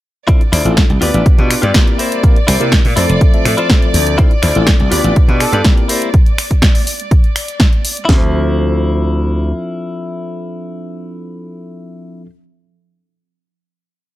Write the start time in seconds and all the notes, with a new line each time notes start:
0.28 C4 D4 E4 F4 A4 C5 D5, kick, closed hi-hat
0.41 closed hi-hat
0.52 D2 E4 F4 C5 D5, finger snap, open hi-hat
0.65 A1 C4 D4 E4 F4 A4, closed hi-hat
0.77 kick, snare, closed hi-hat
0.89 C2, muted clean electric guitar stroke, closed hi-hat
1.01 D2 B3 D4 F4 G4 B4 D5, open hi-hat
1.14 A1, closed hi-hat
1.26 kick, closed hi-hat
1.38 B2 B3 D4 F4 G4 B4, closed hi-hat
1.51 finger snap, open hi-hat
1.62 G2 F4 G4 B4 D5, closed hi-hat
1.74 A#3 C4 E4 G4 A#4, kick, snare, closed hi-hat
1.87 closed hi-hat
1.98 E4 G4 A#4 C5, open hi-hat
2.12 closed hi-hat
2.23 A#3 C4 E4 G4 A#4, kick, closed hi-hat
2.36 closed hi-hat
2.47 C2 E4 G4 A#4 C5, finger snap, open hi-hat
2.60 C3 A#3 C4 E4 G4 A#4, closed hi-hat
2.72 kick, snare, closed hi-hat
2.84 A#2, muted clean electric guitar stroke, open hi-hat
2.96 F2 F3 A3 C4 E4 F4 A4 C5 E5, open hi-hat
3.09 F1, closed hi-hat
3.21 kick, closed hi-hat
3.34 F3 A3 C4 A4 E5, muted slap bass stroke, closed hi-hat
3.45 A2, finger snap, open hi-hat
3.57 E4 F4 A4 C5, closed hi-hat
3.70 F3 A3 C4 A4 E5, kick, snare, closed hi-hat
3.82 closed hi-hat
3.94 D2, open hi-hat
4.07 closed hi-hat
4.18 E4 F4 C5 D5, kick, closed hi-hat
4.31 closed hi-hat
4.42 D2 E4 F4 C5 D5, finger snap, open hi-hat
4.55 A1 C4 D4 E4 F4 A4, closed hi-hat
4.67 kick, snare, closed hi-hat
4.79 C2, muted clean electric guitar stroke, closed hi-hat
4.91 D2 B3 D4 F4 G4 B4 D5, open hi-hat
5.04 A1, closed hi-hat
5.16 kick, closed hi-hat
5.28 B2 B3 D4 F4 G4 B4, closed hi-hat
5.40 A4, finger snap, open hi-hat
5.52 G2 F4 G4 B4 D5, closed hi-hat
5.64 A#3 C4 E4 G4 A#4, kick, snare, closed hi-hat
5.77 closed hi-hat
5.88 E4 G4 A#4 C5, open hi-hat
6.02 closed hi-hat
6.14 kick, closed hi-hat
6.26 closed hi-hat
6.38 finger snap, open hi-hat
6.51 kick, closed hi-hat
6.62 kick, snare, closed hi-hat
6.75 open hi-hat
6.87 open hi-hat
7.00 closed hi-hat
7.11 kick, closed hi-hat
7.24 closed hi-hat
7.36 finger snap, open hi-hat
7.48 closed hi-hat
7.60 kick, snare, closed hi-hat
7.73 closed hi-hat
7.85 open hi-hat
7.97 closed hi-hat
8.05 D2 C4 D4 E4 F4 E5, kick, snare
8.09 F3 A4 C5